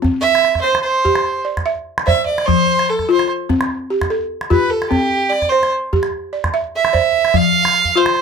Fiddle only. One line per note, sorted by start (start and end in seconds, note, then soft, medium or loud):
0.21 0.60 E5 loud
0.61 0.82 C5 loud
0.83 1.41 C5 medium
2.07 2.26 E5 medium
2.26 2.48 D5 medium
2.46 2.91 C5 loud
2.90 3.09 A4 medium
3.12 3.29 C5 medium
4.51 4.72 B4 medium
4.70 4.89 A4 medium
4.90 5.31 G4 loud
5.30 5.51 D5 medium
5.49 5.71 C5 medium
6.76 7.38 E5 loud
7.36 7.99 F5 loud
7.97 8.22 C5 loud